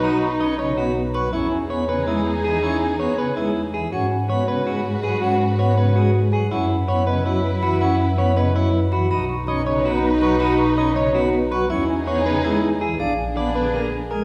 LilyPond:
<<
  \new Staff \with { instrumentName = "Marimba" } { \time 7/8 \key b \major \tempo 4 = 162 b''8 cis'''8 b''8 dis''8 cis''8 b'8 cis'''8 | e''8 gis''8 e''8 cis''8 b'8 gis'8 gis''8 | e''8 gis''8 e''8 cis''8 b'8 gis'8 gis''8 | fis''8 gis''8 fis''8 cis''8 b'8 gis'8 gis''8 |
fis''8 gis''8 fis''8 cis''8 b'8 gis'8 gis''8 | fis''8 b''8 fis''8 dis''8 cis''8 b'8 b''8 | fis''8 b''8 fis''8 dis''8 cis''8 b'8 b''8 | b''8 cis'''8 b''8 dis''8 cis''8 b'8 cis'''8 |
b''8 cis'''8 b''8 dis''8 cis''8 b'8 cis'''8 | e''8 gis''8 e''8 cis''8 b'8 gis'8 gis''8 | eis''8 gis''8 eis''8 b'8 ais'8 gis'8 gis''8 | }
  \new Staff \with { instrumentName = "Clean electric guitar" } { \time 7/8 \key b \major fis'8 r8 dis''8 cis''8 fis'8 r8 b'8 | e'8 r8 cis''8 b'8 e'8 r8 gis'8 | e'8 r8 cis''8 b'8 e'8 r8 gis'8 | fis'8 r8 cis''8 b'8 fis'8 r8 gis'8 |
fis'8 r8 cis''8 b'8 fis'8 r8 gis'8 | e'8 r8 cis''8 b'8 e'8 r8 fis'8 | e'8 r8 cis''8 b'8 e'8 r8 fis'8 | fis'8 r8 dis''8 cis''8 fis'8 r8 b'8 |
fis'8 r8 dis''8 cis''8 fis'8 r8 b'8 | e'8 r8 cis''8 b'8 e'8 r8 gis'8 | gis'8 r8 d''8 b'8 gis'8 r8 ais'8 | }
  \new Staff \with { instrumentName = "String section" } { \time 7/8 \key b \major <dis' b'>2. r8 | <dis' gis'>2.~ <dis' gis'>8~ | <dis' gis'>2. r8 | <fis' b'>2.~ <fis' b'>8~ |
<fis' b'>2. r8 | <e' b'>2.~ <e' b'>8~ | <e' b'>2. r8 | <dis' b'>2.~ <dis' b'>8~ |
<dis' b'>2. r8 | <dis' gis'>2. r8 | <d' gis'>2. r8 | }
  \new Staff \with { instrumentName = "French horn" } { \time 7/8 \key b \major dis'2. r8 | gis'2.~ gis'8~ | gis'2. r8 | fis'2.~ fis'8~ |
fis'2. r8 | e'2.~ e'8~ | e'2. r8 | dis'2.~ dis'8~ |
dis'2. r8 | dis'2. r8 | d'2. r8 | }
  \new Staff \with { instrumentName = "Pipe organ" } { \clef bass \time 7/8 \key b \major dis'8 r8 cis'8 cis8 b8 r8 fis8 | cis'8 r8 b8 cis8 gis8 r8 e8 | cis'8 r8 b8 cis8 gis8 r8 e8 | cis'8 r8 b8 cis8 gis8 r8 fis8 |
cis'8 r8 b8 cis8 gis8 r8 fis8 | cis'8 r8 b8 cis8 fis8 r8 e8 | cis'8 r8 b8 cis8 fis8 r8 e8 | dis'8 r8 cis'8 cis8 b8 r8 fis8 |
dis'8 r8 cis'8 cis8 b8 r8 fis8 | cis'8 r8 b8 cis8 gis8 r8 e8 | d'8 r8 b8 d8 ais8 r8 gis8 | }
  \new Staff \with { instrumentName = "Double bass section" } { \clef bass \time 7/8 \key b \major b,,2.~ b,,8 | e,2.~ e,8~ | e,2.~ e,8 | gis,2.~ gis,8~ |
gis,2.~ gis,8 | fis,2.~ fis,8~ | fis,2.~ fis,8 | b,,2.~ b,,8~ |
b,,2.~ b,,8 | e,2.~ e,8 | ais,,2.~ ais,,8 | }
>>